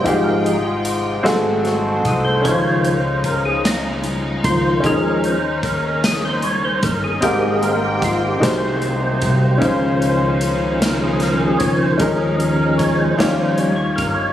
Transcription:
Already playing: C5 G5
0.03 G#1 G#2 F3 G#3 D#4 F4 G4 G#4, kick, closed hi-hat
0.24 A#4
0.44 G#4, closed hi-hat
0.65 F4
0.85 closed hi-hat
1.23 G#1 G#2 F#3 A3 C4 F#4 G#4 A4 C5, snare, closed hi-hat
1.63 F#4, snare, closed hi-hat
2.05 C2 G#4, kick, closed hi-hat
2.25 C5
2.42 C#2 C#3 D#3 F3 G#3 C#4 D#4 C5 C#5, kick, closed hi-hat
2.47 F4 C5
2.85 C5, closed hi-hat
3.24 A#4, kick, closed hi-hat
3.45 G#4
3.65 D#4, snare, closed hi-hat
4.04 closed hi-hat
4.44 C#2 D#3 F3 F4 C5, kick, closed hi-hat
4.80 D#2 D#3 A#3 C#4 D#4, kick, closed hi-hat
4.84 F3 G#3 C#4 G#4 A#4
5.24 C5, closed hi-hat
5.63 A#4, kick, closed hi-hat
6.04 G#4, snare, closed hi-hat
6.25 C5
6.42 C#5, closed hi-hat
6.65 C5
6.83 G1 A#4, kick, closed hi-hat
7.04 G#4
7.21 G#1 G#2 G#3 A#3 C4 G4 G#4 A#4 G5, kick, closed hi-hat
7.42 G#4
7.63 A#4, closed hi-hat
7.84 G4
8.02 F4, kick, closed hi-hat
8.24 G4
8.40 C2 C3 F#3 D#4 F#4 G#4 C5, snare, closed hi-hat
8.44 A#3 C4 C5
8.82 closed hi-hat
9.22 C2, kick, closed hi-hat
9.58 C#2 C#3 D#3 F3 C#4 D#4, kick, closed hi-hat
9.62 F3 C#4 F4 C5
10.02 closed hi-hat
10.41 closed hi-hat
10.81 A#4, snare, closed hi-hat
11.00 G#4
11.20 A#4, snare, closed hi-hat
11.40 G#4
11.58 C#2 C#5, kick, closed hi-hat
11.78 C5
11.98 D#2 D#3 F3 G#3 A#3 C#4 D#4 G#4 A#4, kick, closed hi-hat
12.18 G#4
12.36 A#4, closed hi-hat
12.58 A#4
12.78 C#5, kick, closed hi-hat
12.97 C5
13.17 D#2 D#3 F3 G3 D#4 F4 G4 A#4 C#5, snare, closed hi-hat
13.21 C#4
13.37 C5
13.56 C#5, closed hi-hat
13.76 C#5
13.96 G1 A#4, kick, closed hi-hat
14.14 C#5

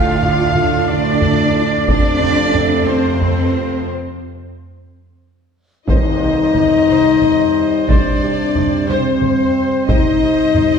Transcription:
Already playing: D2 A2 A3 D4 F4 A4 F5
0.22 F4 D5, taiko low-mid
0.55 D4 A4, taiko low-mid
0.88 D2 D4 F4 D5
1.21 D4 A4, taiko low-mid
1.55 F4 D5
1.88 F2 C3 A3 C4 D4 F4 A4 D5, taiko
2.21 F4 C5, taiko low-mid
2.55 C4 A4, taiko low-mid
2.88 F2 C4 F4 C5
3.21 C4 A4, taiko low-mid
3.54 F4 C5
5.87 C2 C3 G3 D#4 C5 D#5, taiko, tam-tam
6.22 C2 C3 G4
6.55 C2 C3 D#4, taiko low-mid
6.88 C2 C3 C5
7.22 taiko low-mid
7.87 C2 C3 D4 C5 D5, taiko
8.22 C2 C3 G4
8.55 C2 C3 D#4, taiko low-mid
8.88 C2 C3 C4 C5
9.22 taiko low-mid
9.88 C2 C3 G3 D#4 C5 D#5, taiko
10.22 C2 C3 G4
10.55 C2 C3 D#4, taiko low-mid

